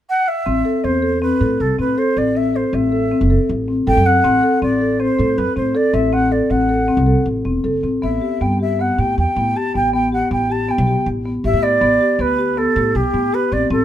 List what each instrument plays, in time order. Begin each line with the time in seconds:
0.09 flute F#5
0.28 flute E5
0.46 upright bass A1, marimba C4
0.65 marimba A4
0.84 upright bass E2, marimba C4, flute C5
1.02 marimba A4
1.22 marimba C4, flute B4
1.41 upright bass A2, marimba A4
1.60 upright bass C2, flute A4
1.78 upright bass A2, marimba C4, flute B4
1.98 marimba A4, flute C5
2.17 upright bass A1, marimba C4, flute D5
2.35 marimba C4, flute E5
2.54 marimba A4, flute C5
2.73 upright bass A1, marimba C4, flute E5
2.92 marimba A4
3.11 marimba C4
3.21 upright bass F#1
3.30 marimba A4
3.49 upright bass A1
3.68 marimba C4
3.87 upright bass A1, marimba A4, flute G5
3.97 upright bass F#2
4.06 marimba C4, flute F#5
4.24 upright bass A1, marimba C4
4.43 marimba A4
4.62 upright bass A1, marimba C4, flute D5
4.81 marimba A4
5.00 marimba C4, flute C5
5.19 upright bass A2, marimba A4
5.37 upright bass F#2, flute B4
5.56 upright bass A2, marimba C4, flute C5
5.75 marimba A4, flute D5
5.93 upright bass A1, marimba C4, flute E5
6.13 marimba C4, flute F#5
6.31 marimba A4, flute D5
6.50 upright bass A1, marimba C4, flute F#5
6.69 marimba A4
6.88 marimba C4
6.97 upright bass C2
7.07 marimba A4
7.26 upright bass A1
7.45 upright bass E1, marimba C4
7.64 upright bass F#1, marimba A4
7.83 upright bass A1, marimba C4
8.02 upright bass A1, marimba B3, flute E5
8.21 marimba G4
8.41 upright bass G2, marimba B3, flute G5
8.60 marimba G4, flute E5
8.79 marimba B3, flute F#5
8.98 upright bass A2, marimba G4, flute G5
9.18 upright bass E2, flute G5
9.36 upright bass A2, marimba B3
9.56 marimba G4, flute A5
9.74 upright bass A1, marimba B3, flute G5
9.93 marimba B3, flute G5
10.12 marimba G4, flute F#5
10.31 upright bass A1, marimba B3, flute G5
10.50 marimba G4, flute A5
10.69 marimba B3, flute G5
10.78 upright bass B1
10.87 marimba G4
11.06 upright bass A1
11.25 marimba B3
11.44 upright bass A1, marimba G4, flute E5
11.53 upright bass A2
11.63 marimba B3, flute D5
11.81 upright bass A1, marimba B3
12.01 marimba G4
12.19 upright bass D2, marimba B3, flute B4
12.38 marimba G4
12.57 marimba B3, flute A4
12.76 upright bass A2, marimba G4
12.95 upright bass B1, flute G4
13.14 upright bass A2, marimba B3
13.33 marimba G4, flute B4
13.52 upright bass A1, marimba C4, flute D5
13.70 upright bass A1, marimba C4, flute A4